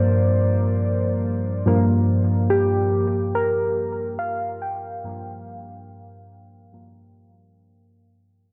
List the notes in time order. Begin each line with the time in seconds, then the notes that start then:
Already playing: G2 F3 A#3
1.66 G2 F3 A#3
2.50 G4
3.35 A#4
4.19 F5
4.62 G5
5.04 G2 F3 A#3
6.73 G2 F3 A#3